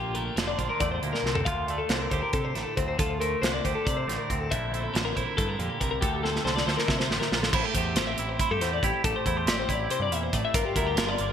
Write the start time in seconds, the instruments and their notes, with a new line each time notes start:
Already playing: picked electric bass A#1, clean electric guitar A#2 D3 F4 G4
0.14 clean electric guitar A3 A#4, closed hi-hat
0.36 picked electric bass F1, clean electric guitar D3 C5, snare, closed hi-hat
0.48 clean electric guitar D5
0.58 picked electric bass A#1, clean electric guitar F4 C5, kick, closed hi-hat
0.69 clean electric guitar A#4
0.80 picked electric bass E2, clean electric guitar A2 D5, kick, closed hi-hat
0.92 clean electric guitar C5
1.03 picked electric bass D2, clean electric guitar A#2, closed hi-hat
1.13 clean electric guitar A#4, snare
1.23 picked electric bass C2, clean electric guitar C3, snare
1.35 clean electric guitar A4, floor tom
1.45 picked electric bass D2, clean electric guitar D2 F4 F5, kick, closed hi-hat
1.67 clean electric guitar A3 D5, closed hi-hat
1.78 clean electric guitar A4
1.89 picked electric bass C2, clean electric guitar D3 C5, snare, closed hi-hat
2.00 clean electric guitar A#4
2.11 picked electric bass D2, clean electric guitar G4 C5, kick, closed hi-hat
2.22 clean electric guitar A#4
2.33 picked electric bass C3, clean electric guitar A4, kick, closed hi-hat
2.45 clean electric guitar C5
2.55 picked electric bass A1, clean electric guitar A2 A4, snare, closed hi-hat
2.77 picked electric bass D2, clean electric guitar C4 C5, kick, closed hi-hat
2.88 clean electric guitar C5
2.98 clean electric guitar D2 F4 A4, picked electric bass D2, kick, closed hi-hat
3.20 clean electric guitar A3 A#4, closed hi-hat
3.42 picked electric bass C2, clean electric guitar D3 C5, snare, closed hi-hat
3.53 clean electric guitar D5
3.65 picked electric bass D2, clean electric guitar G4 C5, kick, closed hi-hat
3.75 clean electric guitar A4
3.85 picked electric bass C3, clean electric guitar D5, kick, closed hi-hat
3.97 clean electric guitar C5
4.08 picked electric bass A1, clean electric guitar A2, snare, closed hi-hat
4.18 clean electric guitar A#4
4.30 picked electric bass D2, clean electric guitar C4, kick, closed hi-hat
4.40 clean electric guitar A4
4.51 picked electric bass A#1, clean electric guitar A#2 D3 A3 C4 E4 E5, kick, closed hi-hat
4.72 clean electric guitar A3 C5, closed hi-hat
4.83 clean electric guitar A4
4.94 picked electric bass A1, clean electric guitar D3 C5, snare, closed hi-hat
5.05 clean electric guitar A#4
5.15 picked electric bass A#1, clean electric guitar E4 C5, kick, closed hi-hat
5.26 clean electric guitar A#4
5.37 picked electric bass G2, clean electric guitar A2 A4, kick, closed hi-hat
5.49 clean electric guitar A#4
5.59 picked electric bass F2, clean electric guitar A#2 G4, closed hi-hat
5.81 picked electric bass C2, clean electric guitar C3 A#4, kick, closed hi-hat
5.91 clean electric guitar A#4
6.01 picked electric bass D2, clean electric guitar D2 G4 A4, kick, closed hi-hat
6.23 clean electric guitar C4 A4, snare
6.36 snare
6.45 picked electric bass C2, clean electric guitar D3 C5, snare
6.56 clean electric guitar D5, snare
6.66 picked electric bass D2, clean electric guitar A4 C5, snare
6.77 clean electric guitar A#4, snare
6.88 picked electric bass C3, clean electric guitar E5, kick, snare
6.99 clean electric guitar C5, snare
7.09 picked electric bass A1, clean electric guitar A2, snare
7.20 clean electric guitar A#4, snare
7.31 picked electric bass A#1, clean electric guitar F4, snare
7.42 clean electric guitar A4, snare
7.53 picked electric bass A1, clean electric guitar A2 E4 C5, kick, crash
7.64 clean electric guitar G4 A4
7.75 picked electric bass E2, clean electric guitar G4 C5, kick, closed hi-hat
7.96 picked electric bass A1, clean electric guitar C4 G4 C5, snare, closed hi-hat
8.07 clean electric guitar E5
8.18 picked electric bass A1, clean electric guitar E4, closed hi-hat
8.29 clean electric guitar C5
8.39 clean electric guitar E4, kick, closed hi-hat
8.51 picked electric bass G2, clean electric guitar G4 A4
8.61 picked electric bass E2, clean electric guitar A2 C5, snare, closed hi-hat
8.73 clean electric guitar D5
8.83 picked electric bass A1, clean electric guitar E4 G4, kick, closed hi-hat
9.04 picked electric bass A1, clean electric guitar A2 G4 A4, kick, closed hi-hat
9.16 clean electric guitar C5
9.26 picked electric bass E2, clean electric guitar E4 C5, kick, closed hi-hat
9.37 clean electric guitar G4
9.46 picked electric bass A1, clean electric guitar C4 G4 D5, snare, closed hi-hat
9.59 clean electric guitar C5
9.69 picked electric bass A1, clean electric guitar E4 D5, kick, closed hi-hat
9.90 clean electric guitar C3 C5, closed hi-hat
10.00 picked electric bass G2, clean electric guitar D5
10.11 picked electric bass E2, clean electric guitar A#2 E5, closed hi-hat
10.23 clean electric guitar C5
10.33 picked electric bass A1, clean electric guitar A2 D5, kick, closed hi-hat
10.45 clean electric guitar E5
10.54 picked electric bass G1, clean electric guitar G2 F4 A#4, kick, closed hi-hat
10.65 clean electric guitar G4
10.76 picked electric bass D2, clean electric guitar E4 A#4, kick, closed hi-hat
10.87 clean electric guitar G4
10.97 picked electric bass G1, clean electric guitar D3 F4 A#4, snare, closed hi-hat
11.09 clean electric guitar D5
11.18 picked electric bass G1, clean electric guitar A#3, closed hi-hat